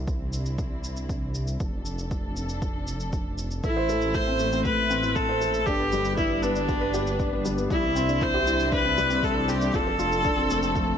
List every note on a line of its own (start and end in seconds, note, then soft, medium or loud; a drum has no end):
0.00 1.58 C2 medium
0.00 1.59 C4 medium
0.00 1.59 D4 medium
0.00 1.59 E4 medium
0.08 kick loud
0.08 shaker soft
0.33 shaker medium
0.46 shaker soft
0.58 kick medium
0.58 shaker soft
0.84 shaker medium
0.97 shaker soft
1.09 kick medium
1.09 shaker soft
1.35 shaker medium
1.48 shaker soft
1.60 3.61 F1 medium
1.60 3.62 F3 medium
1.60 3.62 D4 medium
1.60 3.62 A4 medium
1.60 kick loud
1.60 shaker soft
1.86 shaker medium
1.99 shaker soft
2.11 kick medium
2.11 shaker soft
2.36 shaker medium
2.49 shaker soft
2.62 kick medium
2.62 shaker soft
2.87 shaker medium
3.00 shaker soft
3.13 kick medium
3.13 shaker soft
3.38 shaker medium
3.51 shaker soft
3.64 5.65 A1 medium
3.64 5.65 A3 medium
3.64 5.65 C4 medium
3.64 4.16 E4 medium
3.64 5.65 E4 medium
3.64 3.76 A4 medium
3.64 kick medium
3.64 shaker soft
3.76 3.89 C5 medium
3.89 3.96 A4 medium
3.89 shaker medium
4.01 shaker soft
4.14 4.26 E4 medium
4.14 4.64 C5 loud
4.14 kick medium
4.14 shaker soft
4.27 4.39 C4 medium
4.39 4.52 A3 medium
4.39 shaker medium
4.52 4.65 C4 medium
4.52 shaker soft
4.64 4.77 A3 medium
4.64 5.16 B4 loud
4.64 kick medium
4.64 shaker soft
4.90 4.98 C4 medium
4.90 shaker medium
5.03 5.15 E4 medium
5.03 shaker soft
5.15 5.67 A4 loud
5.15 5.28 A4 medium
5.15 kick medium
5.15 shaker soft
5.29 5.41 C5 medium
5.41 5.49 A4 medium
5.41 shaker medium
5.54 shaker soft
5.66 7.68 G1 medium
5.66 7.69 G3 medium
5.66 10.98 D4 medium
5.66 5.79 D4 medium
5.66 6.16 G4 loud
5.66 7.69 B4 medium
5.66 kick medium
5.66 shaker soft
5.80 5.92 B3 medium
5.92 6.05 G3 medium
5.92 shaker medium
6.05 6.17 B3 medium
6.05 shaker soft
6.17 6.30 G3 medium
6.17 6.44 E4 medium
6.17 kick medium
6.17 shaker soft
6.42 6.50 B3 medium
6.42 7.45 D4 medium
6.42 shaker medium
6.56 6.68 D4 medium
6.56 shaker soft
6.69 6.81 G4 medium
6.69 kick medium
6.69 shaker soft
6.81 6.93 B4 medium
6.94 7.01 G4 medium
6.94 shaker medium
7.07 shaker soft
7.19 7.32 D4 medium
7.19 kick medium
7.19 shaker soft
7.32 7.44 B3 medium
7.45 7.57 G3 medium
7.45 shaker medium
7.58 7.70 B3 medium
7.58 shaker soft
7.70 9.71 C2 medium
7.70 7.83 G3 medium
7.70 9.72 C4 medium
7.70 9.72 E4 medium
7.70 8.24 E4 loud
7.70 kick loud
7.70 shaker soft
7.96 8.03 C4 medium
7.96 shaker medium
8.09 8.21 D4 medium
8.09 shaker soft
8.21 8.33 E4 medium
8.21 8.73 C5 loud
8.21 kick medium
8.21 shaker soft
8.34 8.46 G4 medium
8.47 8.54 E4 medium
8.47 shaker medium
8.60 shaker soft
8.72 8.84 D4 medium
8.72 9.26 B4 loud
8.72 kick medium
8.72 shaker soft
8.84 8.97 C4 medium
8.97 9.10 G3 medium
8.97 shaker medium
9.10 9.22 C4 medium
9.10 shaker soft
9.23 9.35 G3 medium
9.23 9.51 A4 loud
9.23 kick medium
9.23 shaker soft
9.48 9.56 C4 medium
9.48 9.77 G4 medium
9.48 shaker medium
9.61 9.73 D4 medium
9.61 shaker soft
9.74 10.98 F1 medium
9.74 10.98 F3 medium
9.74 9.86 F4 medium
9.74 10.98 A4 medium
9.74 10.98 A4 loud
9.74 kick loud
9.74 shaker soft
9.87 9.99 A4 loud
9.99 10.06 F4 medium
9.99 shaker medium
10.12 shaker soft
10.25 10.37 D4 medium
10.25 kick loud
10.25 shaker soft
10.37 10.49 C4 medium
10.50 10.62 A3 medium
10.50 shaker medium
10.63 10.75 C4 medium
10.63 shaker soft
10.76 10.88 A3 medium
10.76 kick medium
10.76 shaker soft